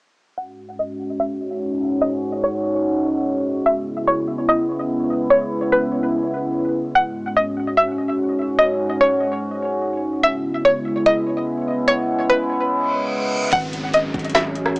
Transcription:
0.38 3.63 G#2 medium
0.38 10.20 G#3 medium
0.38 3.63 C#4 medium
0.38 3.63 F#4 medium
0.38 0.76 F#5 loud
0.79 1.17 D#5 medium
1.20 1.58 E5 medium
2.01 2.40 D#5 loud
2.44 3.63 C#5 medium
3.66 6.92 C#3 medium
3.66 6.92 B3 medium
3.66 6.92 E4 medium
3.66 4.05 E5 medium
4.07 4.46 C#5 medium
4.49 4.87 D#5 medium
5.30 5.69 C#5 loud
5.72 6.91 B4 medium
6.95 10.21 G#2 medium
6.95 10.21 C#4 medium
6.95 10.21 F#4 medium
6.95 7.34 F#5 loud
7.37 7.75 D#5 medium
7.77 8.16 E5 medium
8.59 8.98 D#5 loud
9.01 10.20 C#5 medium
10.23 13.49 C#3 medium
10.23 13.49 G#3 medium
10.23 13.49 B3 medium
10.23 13.49 E4 medium
10.23 10.62 E5 medium
10.65 11.04 C#5 medium
11.06 11.45 D#5 loud
11.88 12.27 C#5 loud
12.30 13.49 B4 medium
12.70 reverse cymbal medium
13.53 14.12 G#1 loud
13.53 14.80 F#3 medium
13.53 14.80 G#3 medium
13.53 14.80 C#4 medium
13.53 13.91 F#5 loud
13.53 kick loud
13.53 closed hi-hat medium
13.53 downlifter medium
13.73 closed hi-hat medium
13.93 14.32 D#5 medium
13.93 closed hi-hat medium
14.14 14.57 G#1 loud
14.14 kick medium
14.14 closed hi-hat soft
14.19 closed hi-hat medium
14.24 closed hi-hat medium
14.30 closed hi-hat medium
14.35 14.73 E5 medium
14.35 snare loud
14.35 closed hi-hat medium
14.55 14.80 A1 loud
14.55 closed hi-hat medium
14.66 cross-stick loud
14.76 closed hi-hat medium

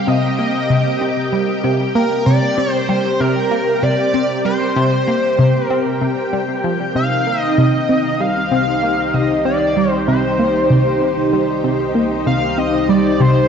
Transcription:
0.00 7.92 C4 medium
0.00 6.96 G4 medium
0.00 8.39 A#4 medium
0.00 7.99 G5 medium
0.07 0.27 C3 medium
0.07 1.64 D#5 medium
0.39 0.59 A#3 medium
0.70 0.82 C3 medium
1.01 1.21 C4 medium
1.33 1.53 G3 medium
1.64 1.84 C3 medium
1.95 2.15 A#3 medium
1.95 2.24 A#4 loud
2.26 2.38 C3 medium
2.26 2.71 D5 loud
2.58 2.78 C4 medium
2.71 2.89 C5 loud
2.89 3.09 G3 medium
2.89 3.22 C5 loud
3.20 3.40 C3 medium
3.20 3.84 A#4 loud
3.51 3.71 A#3 medium
3.83 3.95 C3 medium
3.83 4.45 D5 loud
4.14 4.34 C4 medium
4.45 4.65 G3 medium
4.45 5.65 C5 loud
4.76 4.96 C3 medium
5.08 5.28 A#3 medium
5.39 5.51 C3 medium
5.65 6.29 A#4 loud
5.70 5.90 C4 medium
6.01 6.13 C3 medium
6.33 6.45 G3 medium
6.64 6.94 F3 medium
6.95 13.48 C2 medium
6.95 7.15 C3 loud
6.95 13.48 D#4 medium
6.95 13.48 G4 medium
6.95 7.41 F5 loud
6.95 13.48 G5 medium
7.27 7.47 A#3 medium
7.41 7.58 D#5 loud
7.58 7.70 C3 medium
7.58 8.22 D#5 loud
7.89 8.09 C4 medium
8.08 13.48 G4 medium
8.08 13.48 C5 medium
8.20 8.40 G3 medium
8.20 9.15 F5 loud
8.52 8.71 C3 medium
8.83 9.03 A#3 medium
9.14 9.26 C3 medium
9.14 9.45 D#5 loud
9.45 9.65 C4 medium
9.45 9.90 D5 loud
9.77 9.96 G3 medium
9.90 10.04 C5 loud
10.08 10.28 C3 loud
10.08 11.60 C5 medium
10.39 10.59 A#3 medium
10.70 10.82 C3 medium
11.01 11.21 C4 medium
11.33 11.53 G3 medium
11.64 11.84 C3 loud
11.95 12.15 A#3 medium
12.27 12.38 C3 medium
12.27 12.60 F5 loud
12.58 12.78 C4 medium
12.58 12.91 D#5 loud
12.89 13.09 G3 medium
12.89 13.22 D5 medium
13.20 13.40 C3 medium
13.20 13.48 C5 loud

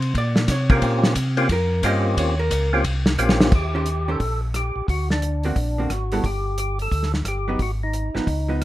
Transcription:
0.00 0.14 C3 loud
0.00 0.14 C5 medium
0.00 ride medium
0.15 0.48 A#2 medium
0.15 0.48 D5 loud
0.15 kick soft
0.15 ride medium
0.36 snare medium
0.48 0.81 C3 loud
0.48 0.71 C#5 loud
0.48 kick soft
0.48 snare soft
0.48 hi-hat pedal medium
0.48 ride medium
0.70 1.14 A#3 medium
0.70 1.14 C4 medium
0.70 1.14 C#4 medium
0.70 1.14 F4 medium
0.70 1.14 G4 medium
0.70 1.03 A#4 medium
0.70 kick medium
0.70 ride medium
0.82 1.15 A#2 medium
0.82 kick soft
0.82 ride medium
1.03 snare medium
1.15 1.49 C3 loud
1.15 kick soft
1.15 hi-hat pedal medium
1.15 ride medium
1.37 1.49 A#3 medium
1.37 1.48 C4 medium
1.37 1.49 C#4 medium
1.37 1.49 F4 medium
1.37 1.49 G4 medium
1.37 ride medium
1.49 1.82 F2 medium
1.49 1.83 A#4 loud
1.49 kick soft
1.49 ride medium
1.83 2.16 G2 loud
1.83 2.35 A#3 medium
1.83 2.35 C4 medium
1.83 2.35 C#4 medium
1.83 2.35 F4 medium
1.83 2.35 G4 medium
1.83 2.16 D#5 loud
1.83 kick soft
1.83 hi-hat pedal medium
1.83 ride medium
2.17 2.50 D#2 medium
2.17 2.39 C#5 medium
2.17 kick soft
2.17 ride medium
2.39 2.71 A#4 loud
2.50 2.84 C#2 loud
2.50 kick soft
2.50 hi-hat pedal medium
2.50 ride medium
2.73 2.84 A#3 medium
2.73 2.84 C4 medium
2.73 2.84 C#4 medium
2.73 2.84 F4 medium
2.73 2.84 G4 loud
2.84 3.17 C2 medium
2.84 kick soft
2.84 ride medium
3.06 snare medium
3.18 3.51 A#1 loud
3.18 3.53 A#3 medium
3.18 3.53 C4 medium
3.18 3.53 C#4 medium
3.18 3.53 F4 medium
3.18 3.53 G4 medium
3.18 hi-hat pedal medium
3.29 snare medium
3.41 snare loud
3.52 4.17 D#2 medium
3.52 4.11 G4 medium
3.52 kick medium
3.52 crash medium
3.75 3.85 D#3 medium
3.75 3.86 C#4 medium
3.75 3.86 G4 medium
3.75 3.86 C5 medium
3.86 closed hi-hat soft
4.08 4.19 D#3 medium
4.08 4.19 C#4 medium
4.08 4.20 G4 medium
4.08 4.41 A4 loud
4.08 4.20 C5 medium
4.20 4.72 A#1 medium
4.20 kick soft
4.20 open hi-hat soft
4.54 4.87 G4 medium
4.54 cross-stick medium
4.54 closed hi-hat medium
4.76 4.82 A#1 soft
4.88 5.52 D2 medium
4.88 5.09 F#4 medium
4.88 kick soft
4.88 open hi-hat soft
5.10 5.93 D4 medium
5.10 snare soft
5.22 closed hi-hat soft
5.43 5.55 D3 medium
5.43 5.55 A#3 medium
5.43 5.56 C4 medium
5.43 5.56 F#4 medium
5.43 open hi-hat soft
5.56 5.87 A#1 medium
5.56 kick soft
5.56 open hi-hat soft
5.78 5.89 D3 medium
5.78 5.90 A#3 medium
5.78 5.90 C4 medium
5.78 5.90 F#4 medium
5.89 6.21 G#1 medium
5.89 6.25 F#4 medium
5.89 cross-stick medium
5.89 closed hi-hat soft
6.12 6.23 G3 medium
6.12 6.23 B3 medium
6.12 6.23 E4 medium
6.12 6.23 A4 medium
6.12 open hi-hat soft
6.24 6.88 G1 medium
6.24 6.58 G4 medium
6.24 kick soft
6.24 open hi-hat soft
6.58 6.79 G4 medium
6.58 closed hi-hat medium
6.79 7.12 A4 medium
6.79 open hi-hat soft
6.91 7.23 D2 medium
6.91 kick soft
6.91 open hi-hat soft
7.03 snare soft
7.14 snare soft
7.25 7.56 G1 medium
7.25 7.62 G4 medium
7.25 cross-stick medium
7.25 closed hi-hat medium
7.48 7.58 F#3 medium
7.48 7.59 B3 medium
7.48 7.59 D#4 medium
7.59 8.11 G#1 medium
7.59 7.71 F#4 medium
7.59 kick soft
7.59 open hi-hat soft
7.83 8.64 D#4 medium
7.93 closed hi-hat soft
8.15 8.21 G#1 soft
8.15 8.26 F3 medium
8.15 8.26 B3 medium
8.15 8.26 D#4 medium
8.15 snare soft
8.27 8.64 C#2 medium
8.27 kick soft
8.27 open hi-hat soft
8.48 8.60 F3 medium
8.48 8.60 B3 medium
8.48 8.60 D#4 medium

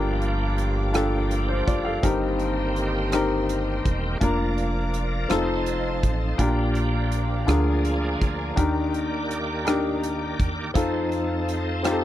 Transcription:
0.00 1.63 G1 medium
0.00 0.91 G2 medium
0.00 2.00 F3 medium
0.00 2.03 A#3 soft
0.00 0.55 D4 medium
0.00 2.00 D4 soft
0.00 0.55 F4 medium
0.00 0.56 G4 medium
0.00 2.00 G4 medium
0.00 0.95 A4 soft
0.00 0.56 A#4 medium
0.00 2.00 F5 soft
0.00 4.18 G5 soft
0.00 2.02 D6 medium
0.22 closed hi-hat soft
0.58 closed hi-hat soft
0.93 1.64 D4 medium
0.93 1.31 F4 soft
0.93 1.31 G4 soft
0.93 1.31 A4 medium
0.93 cross-stick medium
0.93 closed hi-hat soft
1.31 closed hi-hat soft
1.49 1.66 C5 soft
1.67 2.01 F#1 medium
1.67 1.85 F4 soft
1.67 1.85 D5 soft
1.67 kick medium
1.67 closed hi-hat soft
1.85 2.20 A4 soft
1.85 2.20 F5 soft
2.03 3.81 G1 medium
2.03 3.09 G2 medium
2.03 4.18 D#3 medium
2.03 4.18 A#3 soft
2.03 2.73 C4 medium
2.03 4.18 C4 soft
2.03 2.73 D#4 medium
2.03 2.73 G4 medium
2.03 4.18 G4 medium
2.03 2.74 A#4 medium
2.03 4.19 D#5 soft
2.03 4.19 C6 medium
2.03 kick medium
2.03 closed hi-hat medium
2.40 closed hi-hat soft
2.76 closed hi-hat soft
3.12 3.82 C4 medium
3.12 3.82 D#4 soft
3.12 3.83 G4 soft
3.12 3.83 A#4 medium
3.12 cross-stick medium
3.12 closed hi-hat soft
3.49 closed hi-hat soft
3.85 4.19 E1 medium
3.85 kick medium
3.85 closed hi-hat soft
4.20 5.26 F1 medium
4.20 5.29 F3 medium
4.20 4.91 A#3 medium
4.20 5.31 A#3 soft
4.20 4.91 D4 medium
4.20 5.31 D4 soft
4.20 4.92 F4 medium
4.20 4.28 A4 soft
4.20 4.92 A#4 medium
4.20 5.29 D5 medium
4.20 6.37 F5 soft
4.20 5.29 D6 medium
4.20 kick medium
4.20 closed hi-hat medium
4.28 5.34 A#4 medium
4.58 closed hi-hat soft
4.94 closed hi-hat soft
5.29 5.99 F1 medium
5.29 6.37 F3 medium
5.29 6.00 C4 medium
5.29 6.39 C4 soft
5.29 6.00 D#4 soft
5.29 6.39 D#4 soft
5.29 6.00 F4 soft
5.29 6.39 A4 medium
5.29 6.01 A4 medium
5.29 6.39 D#5 medium
5.29 6.39 A5 soft
5.29 6.39 C6 medium
5.29 cross-stick medium
5.29 closed hi-hat soft
5.66 closed hi-hat soft
6.03 6.37 A1 medium
6.03 kick medium
6.03 closed hi-hat soft
6.38 7.44 A#1 medium
6.38 7.44 A#2 soft
6.38 7.46 F3 medium
6.38 7.46 A#3 soft
6.38 7.47 D4 soft
6.38 7.09 D4 medium
6.38 7.09 F4 medium
6.38 7.48 G4 medium
6.38 7.10 G4 medium
6.38 7.10 A#4 medium
6.38 10.72 D5 soft
6.38 8.56 F5 soft
6.38 7.48 G5 soft
6.38 10.72 A#5 medium
6.38 kick medium
6.38 closed hi-hat medium
6.75 closed hi-hat soft
7.12 closed hi-hat soft
7.47 8.17 D2 medium
7.47 8.53 D3 soft
7.47 8.57 F3 soft
7.47 8.56 A#3 soft
7.47 8.18 D4 medium
7.47 8.57 D4 soft
7.47 8.18 F4 medium
7.47 8.57 G#4 medium
7.47 8.18 G#4 soft
7.47 8.19 A#4 medium
7.47 8.56 G#5 soft
7.47 cross-stick medium
7.47 closed hi-hat soft
7.85 closed hi-hat soft
8.21 8.55 D2 medium
8.21 kick medium
8.21 closed hi-hat soft
8.56 10.35 D#2 medium
8.56 10.71 D#3 medium
8.56 9.62 D#3 medium
8.56 10.71 A#3 soft
8.56 9.27 D4 medium
8.56 9.27 D#4 medium
8.56 10.71 G4 medium
8.56 9.27 G4 medium
8.56 9.27 A#4 medium
8.56 10.71 D5 medium
8.56 10.73 G5 soft
8.56 kick medium
8.56 closed hi-hat medium
8.94 closed hi-hat soft
9.31 closed hi-hat soft
9.65 10.36 D4 medium
9.65 10.36 D#4 medium
9.65 10.37 G4 soft
9.65 10.37 A#4 medium
9.65 cross-stick medium
9.65 closed hi-hat soft
10.03 closed hi-hat soft
10.40 10.73 E2 medium
10.40 kick medium
10.40 closed hi-hat soft
10.74 12.04 F2 medium
10.74 12.04 F3 medium
10.74 11.45 C4 medium
10.74 12.04 C4 medium
10.74 12.04 D#4 soft
10.74 11.45 D#4 medium
10.74 11.45 F4 medium
10.74 10.82 G#4 soft
10.74 11.46 A4 medium
10.74 12.04 C5 medium
10.74 12.04 F5 soft
10.74 12.04 A5 medium
10.74 kick medium
10.74 closed hi-hat medium
10.81 12.04 A4 medium
11.12 closed hi-hat soft
11.49 closed hi-hat soft
11.83 12.04 C4 medium
11.83 12.04 D#4 medium
11.83 12.04 F4 soft
11.83 11.91 G4 medium
11.83 cross-stick medium
11.83 closed hi-hat soft
11.91 12.04 A4 medium

